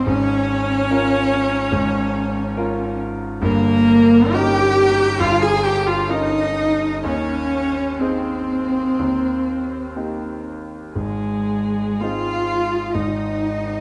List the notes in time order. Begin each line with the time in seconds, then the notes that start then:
0.07 G#1 G#2 C#4 C#5
0.90 C#4 F4 A#4
1.72 G#1 G#2
2.57 C#4 F4 A#4
3.41 G1 G2 A#3 A#4
4.33 C#4 D#4 G4 A#4 G5
5.20 G1 G2 F4 F5
5.42 G#4 G#5
5.63 G4 G5
5.87 F4 F5
6.09 C#4 D#4 A#4 D#5
7.03 D#2 D#3 C#4 C#5
7.99 C4 D#4 G#4 C5
8.99 D#2 D#3
9.96 A#3 D#4 G4
10.94 G#1 G#2 G#3 G#4
12.00 C4 D#4 F4 G#4 F5
12.93 G#1 G#2 D#4 D#5